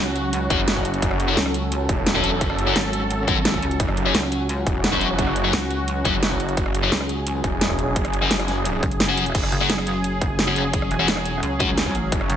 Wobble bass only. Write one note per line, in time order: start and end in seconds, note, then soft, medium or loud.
0.00 0.49 C#2 loud
1.37 1.88 C#2 loud
2.76 3.61 G#1 loud
3.62 3.78 C#2 loud
4.15 4.65 C#2 loud
5.53 6.04 C#2 loud
6.92 7.43 C#2 loud
8.83 9.33 F#1 loud
9.52 10.89 F#1 loud
10.91 11.41 E1 loud
11.43 12.11 C#2 loud
12.30 12.37 F#1 loud